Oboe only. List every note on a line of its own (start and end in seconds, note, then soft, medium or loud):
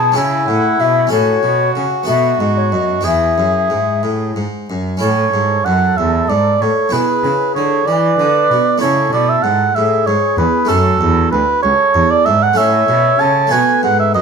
0.00 0.16 G#4 medium
0.17 1.10 E4 medium
1.11 2.05 F#4 medium
2.07 3.06 F#4 medium
3.04 4.53 G#4 medium
5.01 5.67 C#5 medium
5.65 5.99 F#5 medium
5.97 6.31 E5 medium
6.29 6.63 D5 medium
6.61 6.94 C#5 medium
6.92 7.54 B4 medium
7.55 7.88 C#5 medium
7.87 8.80 D5 medium
8.81 9.12 C#5 medium
9.13 9.31 D5 medium
9.29 9.44 E5 medium
9.43 9.77 F#5 medium
9.75 10.08 E5 medium
10.06 10.37 C#5 medium
10.38 10.70 B4 medium
10.68 11.31 A4 medium
11.31 11.62 B4 medium
11.62 12.12 C#5 medium
12.11 12.27 D5 medium
12.25 12.44 E5 medium
12.43 12.59 F#5 medium
12.57 13.22 E5 medium
13.20 13.53 A5 medium
13.51 13.83 G#5 medium
13.83 13.99 F#5 medium
13.99 14.14 E5 medium
14.15 14.22 D#5 medium